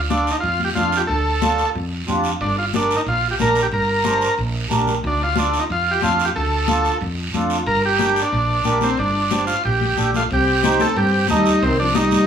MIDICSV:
0, 0, Header, 1, 6, 480
1, 0, Start_track
1, 0, Key_signature, -2, "minor"
1, 0, Tempo, 328947
1, 1591, Time_signature, 4, 2, 24, 8
1, 17901, End_track
2, 0, Start_track
2, 0, Title_t, "Accordion"
2, 0, Program_c, 0, 21
2, 145, Note_on_c, 0, 65, 60
2, 147, Note_on_c, 0, 62, 68
2, 154, Note_on_c, 0, 69, 77
2, 484, Note_off_c, 0, 62, 0
2, 484, Note_off_c, 0, 65, 0
2, 488, Note_off_c, 0, 69, 0
2, 1094, Note_on_c, 0, 62, 62
2, 1106, Note_on_c, 0, 65, 59
2, 1111, Note_on_c, 0, 69, 74
2, 1438, Note_off_c, 0, 62, 0
2, 1444, Note_off_c, 0, 65, 0
2, 1447, Note_off_c, 0, 69, 0
2, 2067, Note_on_c, 0, 62, 70
2, 2071, Note_on_c, 0, 65, 58
2, 2073, Note_on_c, 0, 69, 79
2, 2405, Note_off_c, 0, 62, 0
2, 2407, Note_off_c, 0, 65, 0
2, 2407, Note_off_c, 0, 69, 0
2, 3023, Note_on_c, 0, 62, 77
2, 3033, Note_on_c, 0, 65, 72
2, 3040, Note_on_c, 0, 67, 90
2, 3363, Note_off_c, 0, 62, 0
2, 3367, Note_off_c, 0, 65, 0
2, 3371, Note_off_c, 0, 67, 0
2, 4003, Note_on_c, 0, 62, 65
2, 4003, Note_on_c, 0, 67, 60
2, 4006, Note_on_c, 0, 70, 78
2, 4333, Note_off_c, 0, 62, 0
2, 4333, Note_off_c, 0, 67, 0
2, 4334, Note_off_c, 0, 70, 0
2, 4950, Note_on_c, 0, 62, 71
2, 4951, Note_on_c, 0, 67, 59
2, 4952, Note_on_c, 0, 70, 74
2, 5287, Note_off_c, 0, 62, 0
2, 5287, Note_off_c, 0, 67, 0
2, 5288, Note_off_c, 0, 70, 0
2, 5908, Note_on_c, 0, 62, 71
2, 5915, Note_on_c, 0, 67, 63
2, 5919, Note_on_c, 0, 72, 80
2, 6246, Note_off_c, 0, 62, 0
2, 6249, Note_off_c, 0, 67, 0
2, 6251, Note_off_c, 0, 72, 0
2, 6846, Note_on_c, 0, 67, 71
2, 6847, Note_on_c, 0, 62, 74
2, 6859, Note_on_c, 0, 70, 90
2, 7195, Note_off_c, 0, 67, 0
2, 7196, Note_off_c, 0, 62, 0
2, 7202, Note_off_c, 0, 70, 0
2, 7825, Note_on_c, 0, 62, 65
2, 7825, Note_on_c, 0, 65, 61
2, 7826, Note_on_c, 0, 69, 77
2, 8165, Note_off_c, 0, 62, 0
2, 8165, Note_off_c, 0, 65, 0
2, 8166, Note_off_c, 0, 69, 0
2, 8782, Note_on_c, 0, 62, 64
2, 8785, Note_on_c, 0, 65, 62
2, 8792, Note_on_c, 0, 69, 74
2, 9124, Note_off_c, 0, 62, 0
2, 9126, Note_off_c, 0, 65, 0
2, 9129, Note_off_c, 0, 69, 0
2, 9735, Note_on_c, 0, 62, 66
2, 9739, Note_on_c, 0, 65, 61
2, 9744, Note_on_c, 0, 69, 76
2, 10082, Note_off_c, 0, 62, 0
2, 10084, Note_off_c, 0, 65, 0
2, 10086, Note_off_c, 0, 69, 0
2, 10713, Note_on_c, 0, 62, 79
2, 10716, Note_on_c, 0, 65, 79
2, 10722, Note_on_c, 0, 69, 92
2, 11051, Note_off_c, 0, 62, 0
2, 11053, Note_off_c, 0, 65, 0
2, 11056, Note_off_c, 0, 69, 0
2, 11649, Note_on_c, 0, 62, 74
2, 11664, Note_on_c, 0, 67, 60
2, 11664, Note_on_c, 0, 70, 74
2, 12000, Note_off_c, 0, 62, 0
2, 12007, Note_off_c, 0, 67, 0
2, 12007, Note_off_c, 0, 70, 0
2, 12616, Note_on_c, 0, 62, 83
2, 12620, Note_on_c, 0, 67, 75
2, 12630, Note_on_c, 0, 70, 94
2, 12964, Note_off_c, 0, 62, 0
2, 12966, Note_off_c, 0, 67, 0
2, 12970, Note_off_c, 0, 70, 0
2, 13577, Note_on_c, 0, 62, 70
2, 13591, Note_on_c, 0, 72, 71
2, 13592, Note_on_c, 0, 67, 61
2, 13924, Note_off_c, 0, 62, 0
2, 13931, Note_off_c, 0, 72, 0
2, 13932, Note_off_c, 0, 67, 0
2, 14549, Note_on_c, 0, 62, 63
2, 14556, Note_on_c, 0, 67, 57
2, 14564, Note_on_c, 0, 69, 73
2, 14889, Note_off_c, 0, 62, 0
2, 14893, Note_off_c, 0, 67, 0
2, 14897, Note_off_c, 0, 69, 0
2, 15520, Note_on_c, 0, 63, 70
2, 15521, Note_on_c, 0, 67, 66
2, 15522, Note_on_c, 0, 72, 85
2, 15853, Note_off_c, 0, 63, 0
2, 15854, Note_off_c, 0, 67, 0
2, 15855, Note_off_c, 0, 72, 0
2, 16480, Note_on_c, 0, 63, 70
2, 16484, Note_on_c, 0, 67, 65
2, 16486, Note_on_c, 0, 69, 79
2, 16812, Note_off_c, 0, 63, 0
2, 16814, Note_off_c, 0, 67, 0
2, 16815, Note_off_c, 0, 69, 0
2, 17440, Note_on_c, 0, 63, 72
2, 17449, Note_on_c, 0, 67, 67
2, 17453, Note_on_c, 0, 75, 84
2, 17770, Note_off_c, 0, 63, 0
2, 17774, Note_off_c, 0, 67, 0
2, 17776, Note_off_c, 0, 75, 0
2, 17901, End_track
3, 0, Start_track
3, 0, Title_t, "Transistor combo organ"
3, 0, Program_c, 1, 18
3, 150, Note_on_c, 1, 62, 78
3, 448, Note_off_c, 1, 62, 0
3, 458, Note_on_c, 1, 63, 73
3, 533, Note_off_c, 1, 63, 0
3, 589, Note_on_c, 1, 65, 81
3, 906, Note_off_c, 1, 65, 0
3, 940, Note_on_c, 1, 67, 78
3, 1014, Note_off_c, 1, 67, 0
3, 1094, Note_on_c, 1, 65, 86
3, 1412, Note_on_c, 1, 67, 89
3, 1432, Note_off_c, 1, 65, 0
3, 1488, Note_off_c, 1, 67, 0
3, 1565, Note_on_c, 1, 69, 95
3, 2479, Note_off_c, 1, 69, 0
3, 3520, Note_on_c, 1, 62, 79
3, 3738, Note_off_c, 1, 62, 0
3, 3770, Note_on_c, 1, 65, 77
3, 3873, Note_off_c, 1, 65, 0
3, 4025, Note_on_c, 1, 62, 78
3, 4306, Note_off_c, 1, 62, 0
3, 4325, Note_on_c, 1, 63, 76
3, 4394, Note_off_c, 1, 63, 0
3, 4498, Note_on_c, 1, 65, 86
3, 4783, Note_off_c, 1, 65, 0
3, 4828, Note_on_c, 1, 67, 80
3, 4891, Note_off_c, 1, 67, 0
3, 4982, Note_on_c, 1, 70, 92
3, 5265, Note_off_c, 1, 70, 0
3, 5289, Note_on_c, 1, 67, 83
3, 5357, Note_off_c, 1, 67, 0
3, 5449, Note_on_c, 1, 70, 82
3, 6342, Note_off_c, 1, 70, 0
3, 7397, Note_on_c, 1, 62, 72
3, 7621, Note_off_c, 1, 62, 0
3, 7638, Note_on_c, 1, 65, 82
3, 7840, Note_off_c, 1, 65, 0
3, 7870, Note_on_c, 1, 62, 74
3, 8151, Note_off_c, 1, 62, 0
3, 8168, Note_on_c, 1, 63, 71
3, 8237, Note_off_c, 1, 63, 0
3, 8342, Note_on_c, 1, 65, 80
3, 8627, Note_on_c, 1, 67, 85
3, 8657, Note_off_c, 1, 65, 0
3, 8795, Note_off_c, 1, 67, 0
3, 8813, Note_on_c, 1, 65, 84
3, 9118, Note_on_c, 1, 67, 87
3, 9133, Note_off_c, 1, 65, 0
3, 9189, Note_off_c, 1, 67, 0
3, 9276, Note_on_c, 1, 69, 85
3, 10178, Note_off_c, 1, 69, 0
3, 11193, Note_on_c, 1, 70, 102
3, 11418, Note_off_c, 1, 70, 0
3, 11463, Note_on_c, 1, 67, 97
3, 11973, Note_off_c, 1, 67, 0
3, 12001, Note_on_c, 1, 62, 81
3, 12822, Note_off_c, 1, 62, 0
3, 12890, Note_on_c, 1, 60, 73
3, 13108, Note_off_c, 1, 60, 0
3, 13124, Note_on_c, 1, 62, 85
3, 13791, Note_off_c, 1, 62, 0
3, 13818, Note_on_c, 1, 65, 76
3, 14051, Note_off_c, 1, 65, 0
3, 14083, Note_on_c, 1, 67, 72
3, 14750, Note_off_c, 1, 67, 0
3, 14830, Note_on_c, 1, 65, 81
3, 14930, Note_off_c, 1, 65, 0
3, 15077, Note_on_c, 1, 67, 93
3, 15774, Note_on_c, 1, 69, 94
3, 15797, Note_off_c, 1, 67, 0
3, 16010, Note_on_c, 1, 67, 80
3, 16011, Note_off_c, 1, 69, 0
3, 16449, Note_off_c, 1, 67, 0
3, 16499, Note_on_c, 1, 63, 90
3, 16971, Note_on_c, 1, 60, 90
3, 16979, Note_off_c, 1, 63, 0
3, 17185, Note_off_c, 1, 60, 0
3, 17213, Note_on_c, 1, 62, 90
3, 17435, Note_on_c, 1, 63, 94
3, 17448, Note_off_c, 1, 62, 0
3, 17901, Note_off_c, 1, 63, 0
3, 17901, End_track
4, 0, Start_track
4, 0, Title_t, "Trombone"
4, 0, Program_c, 2, 57
4, 14830, Note_on_c, 2, 57, 68
4, 14931, Note_off_c, 2, 57, 0
4, 15063, Note_on_c, 2, 60, 84
4, 15719, Note_off_c, 2, 60, 0
4, 15773, Note_on_c, 2, 60, 81
4, 15988, Note_off_c, 2, 60, 0
4, 16033, Note_on_c, 2, 60, 81
4, 16461, Note_off_c, 2, 60, 0
4, 16510, Note_on_c, 2, 55, 76
4, 16939, Note_off_c, 2, 55, 0
4, 17019, Note_on_c, 2, 51, 78
4, 17210, Note_off_c, 2, 51, 0
4, 17233, Note_on_c, 2, 53, 73
4, 17436, Note_off_c, 2, 53, 0
4, 17477, Note_on_c, 2, 55, 87
4, 17901, Note_off_c, 2, 55, 0
4, 17901, End_track
5, 0, Start_track
5, 0, Title_t, "Fretless electric bass"
5, 0, Program_c, 3, 35
5, 0, Note_on_c, 3, 38, 94
5, 439, Note_off_c, 3, 38, 0
5, 630, Note_on_c, 3, 41, 81
5, 1014, Note_off_c, 3, 41, 0
5, 1116, Note_on_c, 3, 41, 78
5, 1497, Note_off_c, 3, 41, 0
5, 1594, Note_on_c, 3, 38, 91
5, 2360, Note_off_c, 3, 38, 0
5, 2555, Note_on_c, 3, 41, 78
5, 2937, Note_off_c, 3, 41, 0
5, 3043, Note_on_c, 3, 41, 76
5, 3422, Note_off_c, 3, 41, 0
5, 3511, Note_on_c, 3, 31, 96
5, 4279, Note_off_c, 3, 31, 0
5, 4468, Note_on_c, 3, 34, 77
5, 4853, Note_off_c, 3, 34, 0
5, 4958, Note_on_c, 3, 34, 78
5, 5339, Note_off_c, 3, 34, 0
5, 5431, Note_on_c, 3, 31, 93
5, 6199, Note_off_c, 3, 31, 0
5, 6397, Note_on_c, 3, 34, 81
5, 6779, Note_off_c, 3, 34, 0
5, 6876, Note_on_c, 3, 34, 76
5, 7259, Note_off_c, 3, 34, 0
5, 7353, Note_on_c, 3, 38, 99
5, 8121, Note_off_c, 3, 38, 0
5, 8317, Note_on_c, 3, 41, 81
5, 8700, Note_off_c, 3, 41, 0
5, 8806, Note_on_c, 3, 41, 80
5, 9186, Note_off_c, 3, 41, 0
5, 9284, Note_on_c, 3, 38, 96
5, 10049, Note_off_c, 3, 38, 0
5, 10232, Note_on_c, 3, 41, 84
5, 10618, Note_off_c, 3, 41, 0
5, 10709, Note_on_c, 3, 41, 77
5, 11096, Note_off_c, 3, 41, 0
5, 11182, Note_on_c, 3, 31, 97
5, 11957, Note_off_c, 3, 31, 0
5, 12147, Note_on_c, 3, 34, 83
5, 12536, Note_off_c, 3, 34, 0
5, 12626, Note_on_c, 3, 34, 75
5, 13015, Note_off_c, 3, 34, 0
5, 13113, Note_on_c, 3, 31, 95
5, 13883, Note_off_c, 3, 31, 0
5, 14084, Note_on_c, 3, 34, 81
5, 14466, Note_off_c, 3, 34, 0
5, 14560, Note_on_c, 3, 34, 76
5, 14943, Note_off_c, 3, 34, 0
5, 15036, Note_on_c, 3, 36, 88
5, 15803, Note_off_c, 3, 36, 0
5, 16000, Note_on_c, 3, 43, 89
5, 16381, Note_off_c, 3, 43, 0
5, 16489, Note_on_c, 3, 39, 90
5, 16674, Note_off_c, 3, 39, 0
5, 16960, Note_on_c, 3, 36, 91
5, 17722, Note_off_c, 3, 36, 0
5, 17901, End_track
6, 0, Start_track
6, 0, Title_t, "Drums"
6, 151, Note_on_c, 9, 63, 86
6, 151, Note_on_c, 9, 73, 63
6, 297, Note_off_c, 9, 63, 0
6, 297, Note_off_c, 9, 73, 0
6, 397, Note_on_c, 9, 73, 59
6, 543, Note_off_c, 9, 73, 0
6, 636, Note_on_c, 9, 74, 65
6, 637, Note_on_c, 9, 63, 32
6, 782, Note_off_c, 9, 74, 0
6, 783, Note_off_c, 9, 63, 0
6, 869, Note_on_c, 9, 63, 66
6, 1015, Note_off_c, 9, 63, 0
6, 1107, Note_on_c, 9, 63, 79
6, 1111, Note_on_c, 9, 73, 61
6, 1253, Note_off_c, 9, 63, 0
6, 1257, Note_off_c, 9, 73, 0
6, 1348, Note_on_c, 9, 73, 63
6, 1493, Note_off_c, 9, 73, 0
6, 1586, Note_on_c, 9, 74, 64
6, 1592, Note_on_c, 9, 63, 31
6, 1732, Note_off_c, 9, 74, 0
6, 1738, Note_off_c, 9, 63, 0
6, 2068, Note_on_c, 9, 73, 68
6, 2073, Note_on_c, 9, 63, 88
6, 2214, Note_off_c, 9, 73, 0
6, 2218, Note_off_c, 9, 63, 0
6, 2308, Note_on_c, 9, 73, 61
6, 2454, Note_off_c, 9, 73, 0
6, 2557, Note_on_c, 9, 63, 33
6, 2562, Note_on_c, 9, 74, 62
6, 2703, Note_off_c, 9, 63, 0
6, 2708, Note_off_c, 9, 74, 0
6, 3033, Note_on_c, 9, 73, 60
6, 3039, Note_on_c, 9, 63, 76
6, 3179, Note_off_c, 9, 73, 0
6, 3185, Note_off_c, 9, 63, 0
6, 3261, Note_on_c, 9, 73, 62
6, 3407, Note_off_c, 9, 73, 0
6, 3515, Note_on_c, 9, 74, 62
6, 3521, Note_on_c, 9, 63, 34
6, 3661, Note_off_c, 9, 74, 0
6, 3667, Note_off_c, 9, 63, 0
6, 3995, Note_on_c, 9, 63, 88
6, 4003, Note_on_c, 9, 73, 65
6, 4141, Note_off_c, 9, 63, 0
6, 4149, Note_off_c, 9, 73, 0
6, 4241, Note_on_c, 9, 73, 64
6, 4387, Note_off_c, 9, 73, 0
6, 4474, Note_on_c, 9, 74, 62
6, 4482, Note_on_c, 9, 63, 33
6, 4620, Note_off_c, 9, 74, 0
6, 4627, Note_off_c, 9, 63, 0
6, 4946, Note_on_c, 9, 73, 61
6, 4958, Note_on_c, 9, 63, 79
6, 5092, Note_off_c, 9, 73, 0
6, 5104, Note_off_c, 9, 63, 0
6, 5186, Note_on_c, 9, 73, 61
6, 5332, Note_off_c, 9, 73, 0
6, 5424, Note_on_c, 9, 74, 64
6, 5437, Note_on_c, 9, 63, 32
6, 5570, Note_off_c, 9, 74, 0
6, 5582, Note_off_c, 9, 63, 0
6, 5894, Note_on_c, 9, 73, 68
6, 5900, Note_on_c, 9, 63, 87
6, 6040, Note_off_c, 9, 73, 0
6, 6046, Note_off_c, 9, 63, 0
6, 6147, Note_on_c, 9, 73, 65
6, 6293, Note_off_c, 9, 73, 0
6, 6380, Note_on_c, 9, 63, 33
6, 6388, Note_on_c, 9, 74, 63
6, 6526, Note_off_c, 9, 63, 0
6, 6534, Note_off_c, 9, 74, 0
6, 6869, Note_on_c, 9, 63, 84
6, 6873, Note_on_c, 9, 73, 67
6, 7015, Note_off_c, 9, 63, 0
6, 7019, Note_off_c, 9, 73, 0
6, 7108, Note_on_c, 9, 63, 69
6, 7113, Note_on_c, 9, 73, 63
6, 7254, Note_off_c, 9, 63, 0
6, 7259, Note_off_c, 9, 73, 0
6, 7344, Note_on_c, 9, 63, 34
6, 7356, Note_on_c, 9, 74, 60
6, 7490, Note_off_c, 9, 63, 0
6, 7502, Note_off_c, 9, 74, 0
6, 7817, Note_on_c, 9, 63, 88
6, 7838, Note_on_c, 9, 73, 63
6, 7963, Note_off_c, 9, 63, 0
6, 7984, Note_off_c, 9, 73, 0
6, 8078, Note_on_c, 9, 73, 61
6, 8224, Note_off_c, 9, 73, 0
6, 8303, Note_on_c, 9, 63, 34
6, 8323, Note_on_c, 9, 74, 64
6, 8449, Note_off_c, 9, 63, 0
6, 8469, Note_off_c, 9, 74, 0
6, 8786, Note_on_c, 9, 63, 80
6, 8801, Note_on_c, 9, 73, 63
6, 8932, Note_off_c, 9, 63, 0
6, 8947, Note_off_c, 9, 73, 0
6, 9039, Note_on_c, 9, 73, 67
6, 9185, Note_off_c, 9, 73, 0
6, 9271, Note_on_c, 9, 63, 33
6, 9282, Note_on_c, 9, 74, 63
6, 9417, Note_off_c, 9, 63, 0
6, 9428, Note_off_c, 9, 74, 0
6, 9745, Note_on_c, 9, 63, 89
6, 9748, Note_on_c, 9, 73, 67
6, 9891, Note_off_c, 9, 63, 0
6, 9894, Note_off_c, 9, 73, 0
6, 9991, Note_on_c, 9, 73, 59
6, 10137, Note_off_c, 9, 73, 0
6, 10225, Note_on_c, 9, 74, 60
6, 10232, Note_on_c, 9, 63, 34
6, 10371, Note_off_c, 9, 74, 0
6, 10378, Note_off_c, 9, 63, 0
6, 10708, Note_on_c, 9, 73, 60
6, 10713, Note_on_c, 9, 63, 79
6, 10854, Note_off_c, 9, 73, 0
6, 10859, Note_off_c, 9, 63, 0
6, 10944, Note_on_c, 9, 73, 63
6, 11089, Note_off_c, 9, 73, 0
6, 11184, Note_on_c, 9, 74, 62
6, 11192, Note_on_c, 9, 63, 33
6, 11330, Note_off_c, 9, 74, 0
6, 11338, Note_off_c, 9, 63, 0
6, 11663, Note_on_c, 9, 63, 89
6, 11671, Note_on_c, 9, 73, 69
6, 11809, Note_off_c, 9, 63, 0
6, 11817, Note_off_c, 9, 73, 0
6, 11911, Note_on_c, 9, 73, 63
6, 12057, Note_off_c, 9, 73, 0
6, 12142, Note_on_c, 9, 74, 64
6, 12146, Note_on_c, 9, 63, 34
6, 12288, Note_off_c, 9, 74, 0
6, 12292, Note_off_c, 9, 63, 0
6, 12610, Note_on_c, 9, 73, 64
6, 12620, Note_on_c, 9, 63, 82
6, 12755, Note_off_c, 9, 73, 0
6, 12766, Note_off_c, 9, 63, 0
6, 12852, Note_on_c, 9, 73, 59
6, 12855, Note_on_c, 9, 63, 69
6, 12998, Note_off_c, 9, 73, 0
6, 13001, Note_off_c, 9, 63, 0
6, 13097, Note_on_c, 9, 74, 67
6, 13102, Note_on_c, 9, 63, 35
6, 13243, Note_off_c, 9, 74, 0
6, 13248, Note_off_c, 9, 63, 0
6, 13577, Note_on_c, 9, 73, 70
6, 13588, Note_on_c, 9, 63, 87
6, 13723, Note_off_c, 9, 73, 0
6, 13734, Note_off_c, 9, 63, 0
6, 13820, Note_on_c, 9, 73, 66
6, 13966, Note_off_c, 9, 73, 0
6, 14062, Note_on_c, 9, 74, 63
6, 14074, Note_on_c, 9, 63, 33
6, 14208, Note_off_c, 9, 74, 0
6, 14220, Note_off_c, 9, 63, 0
6, 14315, Note_on_c, 9, 63, 65
6, 14461, Note_off_c, 9, 63, 0
6, 14555, Note_on_c, 9, 63, 79
6, 14555, Note_on_c, 9, 73, 64
6, 14701, Note_off_c, 9, 63, 0
6, 14701, Note_off_c, 9, 73, 0
6, 14798, Note_on_c, 9, 63, 67
6, 14800, Note_on_c, 9, 73, 59
6, 14944, Note_off_c, 9, 63, 0
6, 14946, Note_off_c, 9, 73, 0
6, 15038, Note_on_c, 9, 74, 69
6, 15040, Note_on_c, 9, 63, 37
6, 15184, Note_off_c, 9, 74, 0
6, 15186, Note_off_c, 9, 63, 0
6, 15521, Note_on_c, 9, 63, 94
6, 15524, Note_on_c, 9, 73, 77
6, 15667, Note_off_c, 9, 63, 0
6, 15670, Note_off_c, 9, 73, 0
6, 15750, Note_on_c, 9, 63, 78
6, 15756, Note_on_c, 9, 73, 64
6, 15896, Note_off_c, 9, 63, 0
6, 15902, Note_off_c, 9, 73, 0
6, 16000, Note_on_c, 9, 74, 75
6, 16146, Note_off_c, 9, 74, 0
6, 16233, Note_on_c, 9, 63, 33
6, 16379, Note_off_c, 9, 63, 0
6, 16463, Note_on_c, 9, 73, 68
6, 16467, Note_on_c, 9, 63, 84
6, 16609, Note_off_c, 9, 73, 0
6, 16613, Note_off_c, 9, 63, 0
6, 16717, Note_on_c, 9, 73, 68
6, 16863, Note_off_c, 9, 73, 0
6, 16954, Note_on_c, 9, 63, 34
6, 16965, Note_on_c, 9, 74, 70
6, 17100, Note_off_c, 9, 63, 0
6, 17111, Note_off_c, 9, 74, 0
6, 17433, Note_on_c, 9, 63, 90
6, 17437, Note_on_c, 9, 73, 70
6, 17579, Note_off_c, 9, 63, 0
6, 17583, Note_off_c, 9, 73, 0
6, 17672, Note_on_c, 9, 73, 71
6, 17685, Note_on_c, 9, 63, 76
6, 17818, Note_off_c, 9, 73, 0
6, 17831, Note_off_c, 9, 63, 0
6, 17901, End_track
0, 0, End_of_file